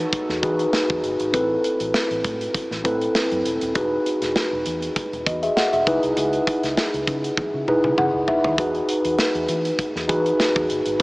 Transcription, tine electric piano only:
0.00 0.42 D#4 medium
0.00 0.43 F#4 medium
0.00 0.43 G#4 medium
0.00 0.44 B4 medium
0.42 0.98 D#4 medium
0.42 0.98 F#4 medium
0.42 0.98 G#4 medium
0.42 0.99 B4 medium
1.33 2.07 C4 medium
1.33 2.08 E4 medium
1.33 2.08 A4 medium
1.33 2.08 B4 medium
2.84 3.40 C4 medium
2.84 3.40 E4 medium
2.84 3.40 A4 medium
2.84 3.40 B4 medium
3.75 4.49 D#4 medium
3.75 4.49 F#4 medium
3.75 4.50 G#4 medium
3.75 4.50 B4 medium
5.27 5.42 F#4 soft
5.27 5.42 D#5 medium
5.43 5.56 G#4 medium
5.43 5.56 E5 medium
5.56 5.72 F#5 medium
5.73 5.86 G#4 soft
5.73 6.01 E5 medium
5.87 6.84 D#4 medium
5.87 6.84 E4 medium
5.87 6.84 G#4 medium
5.87 6.84 B4 medium
7.68 8.23 D#4 medium
7.68 8.23 E4 medium
7.68 8.24 G#4 medium
7.68 8.24 B4 medium
7.98 8.26 F#5 medium
8.28 8.56 E5 medium
8.58 9.32 D#4 medium
8.58 9.32 F#4 medium
8.58 9.33 G#4 medium
8.58 9.33 B4 medium
10.08 10.64 D#4 medium
10.08 10.64 F#4 medium
10.08 10.64 G#4 medium
10.08 10.64 B4 medium
10.99 11.02 C4 medium

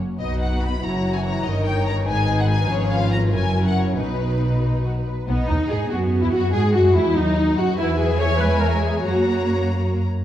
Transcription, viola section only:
0.20 0.79 F#3 soft
0.20 0.79 D#4 soft
0.84 1.14 F#3 soft
0.84 1.46 E4 soft
1.15 1.46 E3 soft
1.46 2.07 D#3 soft
1.46 2.07 D#4 medium
2.08 2.69 D#3 medium
2.08 2.69 D#4 medium
2.69 3.32 F3 medium
2.69 3.32 C#4 medium
3.33 3.97 F#3 medium
3.33 3.97 C#4 medium
3.99 5.06 F#3 soft
3.99 5.08 D#4 soft
5.29 5.48 B3 medium
5.49 5.70 D#4 medium
5.70 5.91 G#4 medium
5.91 6.22 F#4 medium
6.21 6.32 E4 medium
6.32 6.54 F#4 medium
6.53 6.74 G#4 medium
6.74 6.95 F#4 medium
6.94 7.16 E4 medium
7.15 7.57 D#4 medium
7.58 7.66 F#4 medium
7.79 7.99 E4 loud
8.00 8.20 G#4 medium
8.21 8.41 C#5 loud
8.41 8.62 B4 medium
8.62 8.83 A#4 medium
8.83 9.04 G#4 medium
9.03 9.67 F#4 medium

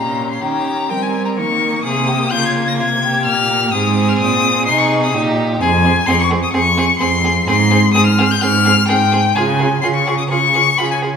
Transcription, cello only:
0.00 0.41 A#2 medium
0.43 0.91 D#3 medium
0.90 1.39 G3 medium
1.37 1.84 D#3 medium
1.85 2.31 C3 medium
2.32 2.80 C#3 medium
2.79 3.28 C3 medium
3.26 3.73 A#2 medium
3.73 4.19 G#2 loud
4.20 4.69 A#2 medium
4.67 5.15 C3 medium
5.14 5.60 A#2 medium
5.61 6.02 F2 loud
6.07 6.48 F2 loud
6.53 6.95 F2 medium
7.00 7.42 F2 medium
7.47 7.89 G#2 loud
7.95 8.36 G#2 medium
8.41 8.83 G#2 loud
8.89 9.30 G#2 medium
9.36 9.77 C#3 loud
9.83 10.25 C#3 medium
10.30 10.73 C#3 medium
10.79 11.17 C#3 medium

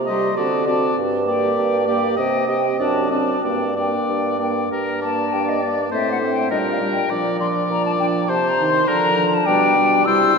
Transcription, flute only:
0.09 0.38 C6 soft
0.38 0.67 A5 soft
0.68 0.97 A5 soft
1.27 1.87 G5 soft
1.88 2.17 G5 soft
2.18 2.48 G5 medium
2.49 2.79 G5 soft
2.81 3.11 A5 soft
3.12 3.43 A5 soft
3.44 3.76 G5 soft
3.78 4.40 G5 soft
4.41 4.71 G5 soft
5.01 5.35 A5 medium
5.33 5.50 G5 medium
5.49 5.64 D#5 soft
5.63 5.92 D5 medium
5.92 6.11 E5 medium
6.12 6.18 F#5 soft
6.31 6.50 G5 medium
6.51 6.57 D#5 medium
6.72 6.78 F5 soft
6.92 7.11 G5 medium
7.40 7.47 C6 medium
7.71 7.85 A#5 medium
7.86 7.92 A5 medium
8.00 8.06 G5 medium
8.28 8.50 A5 medium
8.49 8.67 A#5 medium
8.68 8.90 C6 medium
8.89 9.35 A#5 medium
9.34 9.48 A5 medium
9.46 10.06 G5 medium
10.05 10.38 E6 medium

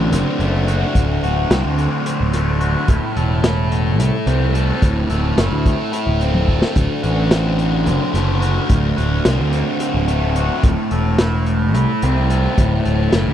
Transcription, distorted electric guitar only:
0.00 0.39 D2 medium
0.00 1.23 D3 medium
0.00 0.12 C4 medium
0.00 0.67 F#4 medium
0.12 1.50 C4 medium
0.40 2.33 A3 medium
0.68 1.22 F#4 medium
0.96 2.34 D2 medium
1.23 2.60 F#4 medium
1.51 2.06 C4 medium
1.79 2.89 D3 medium
2.06 3.45 C4 medium
2.33 3.72 A3 medium
2.61 2.89 F#4 medium
2.90 4.27 A2 medium
3.17 4.54 A4 medium
3.45 3.98 E4 medium
3.72 5.65 A3 medium
3.99 5.36 E4 medium
4.27 6.20 C4 medium
4.54 5.10 A4 medium
4.83 6.21 A2 medium
5.10 6.47 A4 medium
5.38 5.91 E4 medium
5.66 7.58 A3 medium
5.93 6.76 E4 medium
6.21 6.78 C4 medium
6.48 7.03 A4 medium
6.75 8.14 D2 medium
7.03 8.39 F#4 medium
7.30 7.85 C4 medium
7.58 8.97 D3 medium
7.85 9.24 C4 medium
8.13 10.07 A3 medium
8.41 8.96 F#4 medium
8.68 10.07 D2 medium
8.97 10.34 F#4 medium
9.25 9.81 C4 medium
9.52 10.63 D3 medium
9.81 11.19 C4 medium
10.08 11.47 A3 medium
10.36 10.63 F#4 medium
10.63 12.02 A2 medium
10.92 12.30 A4 medium
11.19 11.73 E4 medium
11.47 12.85 A3 medium
11.74 13.12 E4 medium
12.03 13.34 C4 medium
12.30 12.84 A4 medium
12.58 13.34 A2 medium
12.85 13.34 A4 medium
13.13 13.34 E4 medium

